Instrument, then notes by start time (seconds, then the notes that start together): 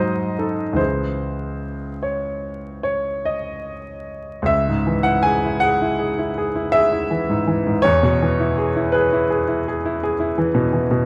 grand piano
Already playing: G#2 F#3 C5 D#5
0.39 D#4 A4
0.73 C#2 E3 E4 C5
0.78 G#4
2.03 C#5
2.83 C#5
3.25 D#5
4.42 C#2 E5
4.69 G#2
4.87 E3
5.03 E4 F#5
5.23 G#4 G#5
5.45 E4
5.60 G#4 F#5
5.82 E4
5.99 G#4
6.19 E4
6.38 G#4
6.55 E4
6.72 G#4 E5
6.92 E4
7.11 E3
7.29 G#2
7.47 E3
7.66 G#2
7.82 E2 C#5
8.03 B2
8.22 E3
8.40 E4
8.58 G#4
8.76 E4
8.92 G#4 B4
9.13 E4
9.30 G#4
9.48 E4
9.68 G#4
9.85 E4
10.03 G#4
10.20 E4
10.38 E3
10.54 B2
10.73 E3
10.91 B2